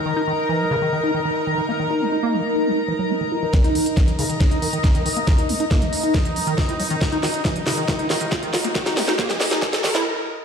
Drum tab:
HH |----------------|----------------|xxoxxxoxxxoxxxox|xxoxxxoxxxoxxxox|
SD |----------------|----------------|o---o---o---o---|o---o---o---o---|
BD |----------------|----------------|o---o---o---o---|o---o---o---o---|

HH |xxoxxxoxxxoxxxox|xxoxxxoxxxox----|
SD |o-o-o-o-o-o-o-o-|oooooooooooo----|
BD |o---o---o---o---|o---o---o-------|